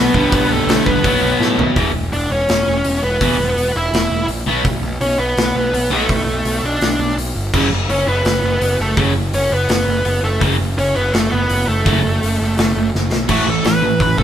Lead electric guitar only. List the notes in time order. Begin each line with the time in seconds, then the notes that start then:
0.00 B3 B4
0.35 B3 B4
0.52 A3 A4
0.86 B3 B4
2.13 D4 D5
2.32 C#4 C#5
3.02 B3 B4
3.76 E4 E5
5.01 C#4 C#5
5.19 B3 B4
5.92 A3 A4
6.65 D4 D5
7.90 C#4 C#5
8.08 B3 B4
8.81 A3 A4
9.35 C#4 C#5
9.52 B3 B4
10.24 A3 A4
10.78 C#4 C#5
10.95 B3 B4
11.12 A3 A4
11.31 B3 B4
11.68 A3 A4
13.30 F#4
13.50 A4
13.67 B4
14.02 B4
14.19 A4